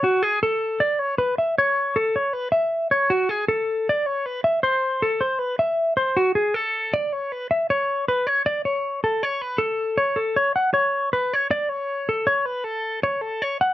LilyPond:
\new Staff \with { instrumentName = "Clean electric guitar" } { \time 4/4 \key a \major \tempo 4 = 157 fis'8 gis'8 a'4 d''8 cis''8 b'8 e''8 | cis''4 a'8 cis''8 b'8 e''4 cis''8 | fis'8 gis'8 a'4 d''8 cis''8 b'8 e''8 | c''4 a'8 c''8 b'8 e''4 c''8 |
fis'8 gis'8 a'4 d''8 cis''8 b'8 e''8 | cis''4 b'8 cis''8 d''8 cis''4 a'8 | cis''8 b'8 a'4 cis''8 a'8 cis''8 fis''8 | cis''4 b'8 cis''8 d''8 cis''4 a'8 |
cis''8 b'8 a'4 cis''8 a'8 cis''8 fis''8 | }